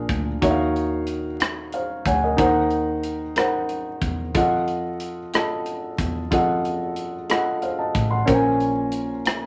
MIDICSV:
0, 0, Header, 1, 4, 480
1, 0, Start_track
1, 0, Tempo, 655022
1, 306, Time_signature, 6, 3, 24, 8
1, 6934, End_track
2, 0, Start_track
2, 0, Title_t, "Grand piano"
2, 0, Program_c, 0, 0
2, 0, Control_c, 0, 64, 127
2, 0, Note_on_c, 0, 46, 57
2, 0, Note_on_c, 0, 62, 58
2, 0, Note_on_c, 0, 68, 56
2, 0, Note_on_c, 0, 70, 54
2, 0, Note_on_c, 0, 77, 67
2, 198, Note_off_c, 0, 62, 0
2, 202, Note_off_c, 0, 68, 0
2, 203, Note_off_c, 0, 70, 0
2, 206, Note_off_c, 0, 77, 0
2, 279, Note_off_c, 0, 46, 0
2, 305, Note_on_c, 0, 63, 67
2, 305, Note_on_c, 0, 66, 63
2, 315, Note_on_c, 0, 51, 57
2, 316, Note_on_c, 0, 73, 70
2, 317, Control_c, 0, 64, 0
2, 321, Note_on_c, 0, 76, 62
2, 361, Note_off_c, 0, 76, 0
2, 373, Note_on_c, 0, 77, 82
2, 422, Control_c, 0, 64, 127
2, 920, Note_off_c, 0, 63, 0
2, 920, Note_off_c, 0, 66, 0
2, 925, Note_off_c, 0, 73, 0
2, 954, Note_off_c, 0, 77, 0
2, 1002, Note_off_c, 0, 51, 0
2, 1273, Note_on_c, 0, 77, 54
2, 1283, Note_on_c, 0, 72, 38
2, 1495, Note_off_c, 0, 77, 0
2, 1504, Note_off_c, 0, 72, 0
2, 1514, Note_on_c, 0, 78, 61
2, 1514, Note_on_c, 0, 80, 58
2, 1518, Note_on_c, 0, 73, 46
2, 1625, Note_off_c, 0, 78, 0
2, 1627, Note_off_c, 0, 73, 0
2, 1638, Note_on_c, 0, 75, 50
2, 1639, Note_on_c, 0, 70, 44
2, 1734, Note_off_c, 0, 70, 0
2, 1734, Note_off_c, 0, 80, 0
2, 1735, Note_on_c, 0, 63, 81
2, 1745, Note_on_c, 0, 51, 59
2, 1745, Note_on_c, 0, 70, 67
2, 1754, Note_on_c, 0, 72, 67
2, 1758, Control_c, 0, 64, 0
2, 1760, Note_on_c, 0, 78, 83
2, 1861, Note_off_c, 0, 75, 0
2, 1881, Control_c, 0, 64, 127
2, 2355, Note_off_c, 0, 63, 0
2, 2360, Note_off_c, 0, 70, 0
2, 2364, Note_off_c, 0, 72, 0
2, 2367, Note_off_c, 0, 78, 0
2, 2437, Note_off_c, 0, 51, 0
2, 2463, Note_on_c, 0, 63, 61
2, 2468, Note_on_c, 0, 70, 53
2, 2476, Note_on_c, 0, 72, 61
2, 2485, Note_on_c, 0, 78, 67
2, 3079, Note_off_c, 0, 63, 0
2, 3081, Note_off_c, 0, 70, 0
2, 3085, Note_off_c, 0, 72, 0
2, 3090, Note_off_c, 0, 78, 0
2, 3184, Note_on_c, 0, 65, 78
2, 3188, Note_on_c, 0, 69, 60
2, 3198, Control_c, 0, 64, 0
2, 3198, Note_on_c, 0, 75, 67
2, 3206, Note_on_c, 0, 78, 79
2, 3320, Control_c, 0, 64, 127
2, 3799, Note_off_c, 0, 65, 0
2, 3801, Note_off_c, 0, 69, 0
2, 3806, Note_off_c, 0, 75, 0
2, 3810, Note_off_c, 0, 78, 0
2, 3915, Note_on_c, 0, 65, 58
2, 3918, Note_on_c, 0, 69, 56
2, 3924, Note_on_c, 0, 75, 53
2, 3932, Note_on_c, 0, 81, 66
2, 4524, Note_off_c, 0, 65, 0
2, 4525, Note_off_c, 0, 69, 0
2, 4528, Note_off_c, 0, 75, 0
2, 4532, Note_off_c, 0, 81, 0
2, 4623, Note_on_c, 0, 65, 69
2, 4636, Note_on_c, 0, 69, 64
2, 4641, Note_on_c, 0, 75, 64
2, 4645, Note_on_c, 0, 78, 78
2, 5237, Note_off_c, 0, 65, 0
2, 5244, Note_off_c, 0, 69, 0
2, 5247, Note_off_c, 0, 75, 0
2, 5248, Note_off_c, 0, 78, 0
2, 5346, Note_on_c, 0, 65, 58
2, 5348, Note_on_c, 0, 69, 54
2, 5356, Note_on_c, 0, 75, 57
2, 5366, Note_on_c, 0, 78, 66
2, 5587, Note_on_c, 0, 77, 54
2, 5590, Note_off_c, 0, 75, 0
2, 5593, Note_on_c, 0, 72, 38
2, 5595, Note_off_c, 0, 78, 0
2, 5700, Note_off_c, 0, 77, 0
2, 5703, Note_off_c, 0, 72, 0
2, 5707, Note_on_c, 0, 81, 53
2, 5712, Note_on_c, 0, 75, 45
2, 5933, Note_off_c, 0, 81, 0
2, 5936, Note_off_c, 0, 75, 0
2, 5941, Note_on_c, 0, 84, 58
2, 5947, Note_on_c, 0, 78, 46
2, 5958, Note_off_c, 0, 65, 0
2, 5959, Note_off_c, 0, 69, 0
2, 6051, Note_on_c, 0, 61, 77
2, 6058, Note_on_c, 0, 70, 68
2, 6060, Note_on_c, 0, 46, 62
2, 6066, Note_on_c, 0, 72, 66
2, 6073, Note_on_c, 0, 79, 67
2, 6075, Control_c, 0, 64, 0
2, 6116, Note_off_c, 0, 79, 0
2, 6117, Note_on_c, 0, 80, 76
2, 6170, Note_off_c, 0, 84, 0
2, 6173, Note_off_c, 0, 78, 0
2, 6214, Control_c, 0, 64, 127
2, 6670, Note_off_c, 0, 61, 0
2, 6674, Note_off_c, 0, 70, 0
2, 6677, Note_off_c, 0, 72, 0
2, 6703, Note_off_c, 0, 80, 0
2, 6751, Note_off_c, 0, 46, 0
2, 6934, End_track
3, 0, Start_track
3, 0, Title_t, "Fingered electric bass"
3, 0, Program_c, 1, 33
3, 68, Note_on_c, 1, 38, 70
3, 288, Note_off_c, 1, 38, 0
3, 308, Note_on_c, 1, 39, 86
3, 1479, Note_off_c, 1, 39, 0
3, 1504, Note_on_c, 1, 38, 81
3, 1727, Note_off_c, 1, 38, 0
3, 1747, Note_on_c, 1, 39, 85
3, 2918, Note_off_c, 1, 39, 0
3, 2944, Note_on_c, 1, 40, 72
3, 3166, Note_off_c, 1, 40, 0
3, 3188, Note_on_c, 1, 41, 76
3, 4358, Note_off_c, 1, 41, 0
3, 4386, Note_on_c, 1, 40, 77
3, 4607, Note_off_c, 1, 40, 0
3, 4629, Note_on_c, 1, 41, 79
3, 5797, Note_off_c, 1, 41, 0
3, 5826, Note_on_c, 1, 33, 71
3, 6046, Note_off_c, 1, 33, 0
3, 6064, Note_on_c, 1, 34, 86
3, 6934, Note_off_c, 1, 34, 0
3, 6934, End_track
4, 0, Start_track
4, 0, Title_t, "Drums"
4, 66, Note_on_c, 9, 36, 80
4, 69, Note_on_c, 9, 42, 50
4, 140, Note_off_c, 9, 36, 0
4, 143, Note_off_c, 9, 42, 0
4, 309, Note_on_c, 9, 36, 87
4, 311, Note_on_c, 9, 42, 74
4, 382, Note_off_c, 9, 36, 0
4, 384, Note_off_c, 9, 42, 0
4, 557, Note_on_c, 9, 42, 35
4, 630, Note_off_c, 9, 42, 0
4, 782, Note_on_c, 9, 42, 51
4, 855, Note_off_c, 9, 42, 0
4, 1027, Note_on_c, 9, 42, 75
4, 1039, Note_on_c, 9, 37, 88
4, 1101, Note_off_c, 9, 42, 0
4, 1113, Note_off_c, 9, 37, 0
4, 1263, Note_on_c, 9, 42, 40
4, 1337, Note_off_c, 9, 42, 0
4, 1506, Note_on_c, 9, 36, 86
4, 1512, Note_on_c, 9, 42, 59
4, 1579, Note_off_c, 9, 36, 0
4, 1585, Note_off_c, 9, 42, 0
4, 1746, Note_on_c, 9, 36, 96
4, 1747, Note_on_c, 9, 42, 78
4, 1820, Note_off_c, 9, 36, 0
4, 1821, Note_off_c, 9, 42, 0
4, 1982, Note_on_c, 9, 42, 33
4, 2055, Note_off_c, 9, 42, 0
4, 2223, Note_on_c, 9, 42, 53
4, 2297, Note_off_c, 9, 42, 0
4, 2463, Note_on_c, 9, 42, 77
4, 2475, Note_on_c, 9, 37, 93
4, 2536, Note_off_c, 9, 42, 0
4, 2548, Note_off_c, 9, 37, 0
4, 2704, Note_on_c, 9, 42, 41
4, 2777, Note_off_c, 9, 42, 0
4, 2942, Note_on_c, 9, 42, 57
4, 2943, Note_on_c, 9, 36, 77
4, 3016, Note_off_c, 9, 36, 0
4, 3016, Note_off_c, 9, 42, 0
4, 3185, Note_on_c, 9, 42, 76
4, 3188, Note_on_c, 9, 36, 92
4, 3259, Note_off_c, 9, 42, 0
4, 3261, Note_off_c, 9, 36, 0
4, 3427, Note_on_c, 9, 42, 34
4, 3500, Note_off_c, 9, 42, 0
4, 3664, Note_on_c, 9, 42, 57
4, 3737, Note_off_c, 9, 42, 0
4, 3910, Note_on_c, 9, 42, 82
4, 3922, Note_on_c, 9, 37, 90
4, 3983, Note_off_c, 9, 42, 0
4, 3995, Note_off_c, 9, 37, 0
4, 4147, Note_on_c, 9, 42, 44
4, 4220, Note_off_c, 9, 42, 0
4, 4386, Note_on_c, 9, 36, 75
4, 4390, Note_on_c, 9, 42, 60
4, 4459, Note_off_c, 9, 36, 0
4, 4463, Note_off_c, 9, 42, 0
4, 4629, Note_on_c, 9, 36, 90
4, 4632, Note_on_c, 9, 42, 78
4, 4703, Note_off_c, 9, 36, 0
4, 4705, Note_off_c, 9, 42, 0
4, 4873, Note_on_c, 9, 42, 37
4, 4946, Note_off_c, 9, 42, 0
4, 5101, Note_on_c, 9, 42, 53
4, 5175, Note_off_c, 9, 42, 0
4, 5347, Note_on_c, 9, 42, 79
4, 5359, Note_on_c, 9, 37, 92
4, 5420, Note_off_c, 9, 42, 0
4, 5432, Note_off_c, 9, 37, 0
4, 5585, Note_on_c, 9, 42, 43
4, 5658, Note_off_c, 9, 42, 0
4, 5825, Note_on_c, 9, 36, 82
4, 5829, Note_on_c, 9, 42, 58
4, 5898, Note_off_c, 9, 36, 0
4, 5903, Note_off_c, 9, 42, 0
4, 6064, Note_on_c, 9, 42, 85
4, 6065, Note_on_c, 9, 36, 90
4, 6137, Note_off_c, 9, 42, 0
4, 6139, Note_off_c, 9, 36, 0
4, 6304, Note_on_c, 9, 42, 35
4, 6377, Note_off_c, 9, 42, 0
4, 6535, Note_on_c, 9, 42, 54
4, 6608, Note_off_c, 9, 42, 0
4, 6782, Note_on_c, 9, 42, 77
4, 6795, Note_on_c, 9, 37, 89
4, 6856, Note_off_c, 9, 42, 0
4, 6868, Note_off_c, 9, 37, 0
4, 6934, End_track
0, 0, End_of_file